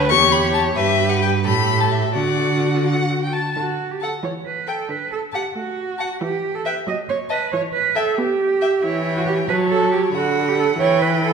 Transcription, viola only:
Already playing: B4
0.11 G4
0.76 G4
1.45 G4
2.16 F#4
3.56 D3
4.23 E3
4.89 D3
5.55 A3
6.21 E3
6.87 F#3
7.53 E3
8.18 B3
8.83 E3
9.48 F#3
10.14 D3
10.78 E3

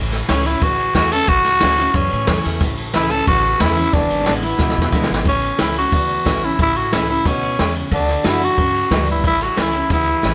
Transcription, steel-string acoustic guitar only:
Already playing: A2
0.29 E3 A3 C#4 E4
0.46 C#4 E4
0.63 E2
0.96 E3 A3 C#4 E4
1.12 C#4 E4
1.29 A2
1.62 E3 A3 C#4 E4
1.78 C#4 E4
1.95 E2
2.28 E3 A3 C#4 E4
2.62 A2
2.93 E3 A3 C#4 E4
3.10 C#4 E4
3.27 E2
3.61 E3 A3 C#4 E4
3.77 C#4 E4
3.94 E2
4.28 D3 G#3 B3 E4
4.43 B3 E4
4.60 B2
4.93 D3 G#3 B3 E4
5.10 B3 E4
5.27 A2
5.60 E3 A3 C#4 E4
5.76 C#4 E4
5.94 E2
6.26 E3 A3 C#4 E4
6.43 C#4 E4
6.60 A2
6.93 E3 A3 C#4 E4
7.08 C#4 E4
7.25 B2
7.59 C#3
7.92 D3
8.24 D3 A3 D4 F#4
8.41 D4 F#4
8.58 C#3
8.92 G2
9.25 A2
9.56 E3 A3 C#4 E4
9.74 C#4 E4
9.90 E2
10.23 E3 A3 C#4 E4

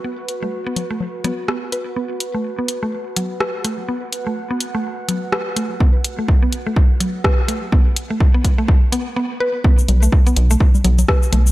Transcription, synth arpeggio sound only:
0.04 B3
0.43 A3
0.67 B3
0.91 A3
1.24 B3
1.48 B3
1.72 B4
1.96 B3
2.35 A3
2.59 B3
2.83 A3
3.16 F#3
3.40 B4
3.64 A3
3.88 B3
4.27 A3
4.51 B3
4.75 A3
5.08 F#3
5.32 B4
5.56 A3
5.80 B3
6.19 A3
6.43 B3
6.67 A3
7.00 F#3
7.24 B4
7.48 A3
7.72 B3
8.11 A3
8.35 B3
8.58 A3
8.92 B3
9.16 B3
9.40 B4
9.64 B3
10.03 A3
10.27 B3
10.51 A3
10.85 F#3
11.09 B4
11.33 A3

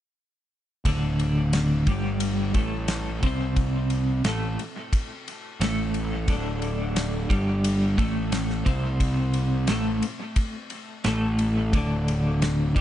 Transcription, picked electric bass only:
0.85 D1
1.87 G1
2.54 A1
3.23 C2
4.24 A1
5.60 A1
6.28 D1
7.29 G1
7.98 A1
8.66 C2
9.69 A1
11.05 A1
11.73 D1
12.76 G1

